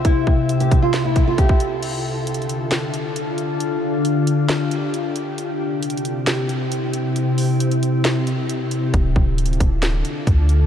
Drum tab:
CC |------------------------------------------------|x-----------------------------------------------|------------------------------------------------|------------------------------------------------|
HH |x-----------x--x--x-----x-----x-----x-----x-----|x-----------x-x-x-x-----x-----x-----x-----x-----|x-----------x-----x-----x-----x-----x-----x-----|x-----------x-x-x-x-----x-----x-----x-----x-----|
CP |------------------------x-----------------------|------------------------x-----------------------|------------------------x-----------------------|------------------------x-----------------------|
SD |------------------------o-----------------------|------------------------o-----------------------|------------------------o-----------------------|------------------------o-----------------------|
BD |o-----o-----------o-----------o-----o--o--------|------------------------------------------------|------------------------------------------------|------------------------------------------------|

CC |------------------------------------------------|------------------------------------------------|
HH |x-----o-----x--x--x-----x-----x-----x-----x-----|x-----------x-x-x-x-----x-----x-----x-----x-----|
CP |------------------------x-----------------------|------------------------x-----------------------|
SD |------------------------o-----------------------|------------------------o-----------------------|
BD |------------------------------------------------|o-----o-----------o-----------------o-----------|